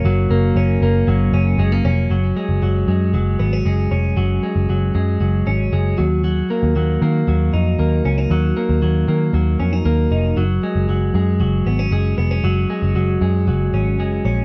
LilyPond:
<<
  \new Staff \with { instrumentName = "Clean electric guitar" } { \clef bass \time 4/4 \key fis \major \tempo 4 = 116 <fis ais cis'>8 ais8 cis'8 ais8 fis8 cis'8 gis16 ais16 cis'8 | fis8 gis8 fis8 gis8 fis8 b16 cis'16 gis8 cis'8 | fis8 gis8 fis8 gis8 fis8 cis'8 gis8 fis8 | fis8 ais8 fis8 ais8 fis8 dis'8 ais8 cis'16 dis'16 |
fis8 ais8 fis8 ais8 fis8 cis'16 dis'16 ais8 dis'8 | fis8 gis8 fis8 gis8 fis8 b16 cis'16 gis8 b16 cis'16 | fis8 gis8 fis8 gis8 fis8 cis'8 gis8 cis'8 | }
  \new Staff \with { instrumentName = "Picked electric bass" } { \clef bass \time 4/4 \key fis \major fis,,8 fis,,8 fis,,8 fis,,8 fis,,8 fis,,8 fis,,8 eis,,8 | fis,,8 r16 fis,,16 fis,,8 fis,8 fis,,8 gis,,8 fis,,8 eis,,8 | fis,,8 r16 fis,,16 fis,,8 fis,8 fis,,8 gis,,8 fis,,8 dis,8~ | dis,8 r16 dis,16 dis,8 dis8 dis,8 eis,8 dis,8 cis,8 |
dis,8 r16 dis,16 dis,8 dis8 dis,8 eis,8 dis,8 eis,,8 | fis,,8 r16 fis,,16 fis,,8 fis,8 fis,,8 gis,,8 fis,,8 eis,,8 | fis,,8 r16 fis,,16 fis,,8 fis,8 fis,,8 gis,,8 fis,,8 ais,,8 | }
>>